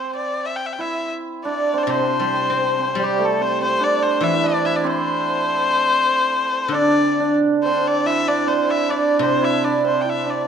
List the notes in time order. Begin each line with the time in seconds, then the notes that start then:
Already playing: C4 C5
0.15 D5
0.46 E5
0.56 G5
0.66 E5
0.72 G5
0.79 E4 E5
1.44 D4 D5
1.74 C4
1.78 C5
1.83 D5
1.87 C3 C4 C5
1.97 C4
2.02 C4
2.09 C4
2.20 G3 C4
2.28 C4
2.36 C4
2.42 C4
2.50 C4
2.57 C4
2.63 C4
2.72 C4
2.79 C4
2.87 C4
2.95 G3
3.03 G4
3.19 A3
3.24 A4
3.41 C4 C5
3.61 C4 C5
3.80 D4 D5
4.02 C4 C5
4.21 E3 E4 E5
4.44 D4 D5
4.65 E4 E5
4.75 D5
4.84 C4 C5
6.68 D3 D4
6.74 D5
7.20 D4
7.63 C4 C5
7.87 D5
8.06 E4 E5
8.27 D4 D5
8.47 C4 C5
8.67 E4 E5
8.89 D4 D5
9.19 C3 C4 C5
9.41 E4 E5
9.64 D4 D5
9.84 C4 C5
10.01 E4 G5
10.10 E5
10.26 D4
10.30 D5